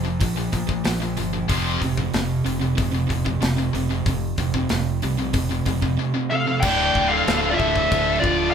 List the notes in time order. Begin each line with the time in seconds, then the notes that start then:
Already playing: F1
0.05 A#2 F3
0.21 A#1 A#2 F3, kick, open hi-hat
0.37 A#2 F3
0.53 A#1 A#2 F3, kick, open hi-hat
0.69 A#2 F3, kick
0.85 A#1 A#2 F3, snare, open hi-hat
1.02 A#2 F3
1.17 G1 A#2 F3, open hi-hat
1.33 A#2 F3
1.48 F1 F2 C3 F3, kick, open hi-hat
1.82 F1 F2 C3, kick, open hi-hat
1.98 F2 C3, kick
2.14 F1 F2 C3, snare, open hi-hat
2.45 F1 F2 C3, open hi-hat
2.61 F2 C3
2.77 F1 F2 C3, kick, open hi-hat
2.94 F2 C3
3.09 F1 F2 C3, kick, open hi-hat
3.25 F2 C3, kick
3.42 F1 F2 C3, snare, open hi-hat
3.58 F2 C3
3.73 F1 F2 C3, open hi-hat
3.91 F2 C3
4.05 F1 F2 C3, kick, open hi-hat
4.38 F1 F2 C3, kick, open hi-hat
4.54 F2 C3, kick
4.69 F1 F2 C3, snare, open hi-hat
5.02 C2 F2 C3, open hi-hat
5.19 F2 C3
5.33 F1 F2 C3, kick, open hi-hat
5.51 F2 C3
5.66 F1 F2 C3, kick, open hi-hat
5.82 F2 C3, kick
5.99 F2 C3
6.14 F2 C3
6.30 F2 C3 A4 F5
6.47 F2 C3
6.60 D1 D2 F3 D4 D5 G5 A5, kick, crash, china
6.64 A2 D3
6.94 D1, kick
7.08 A4 F5
7.28 D1, snare, china
7.51 F4 D5
7.55 A4 E5
7.59 D1, kick
7.76 kick
7.92 D1, kick, china
8.20 F4 D5, kick
8.24 D1
8.51 F5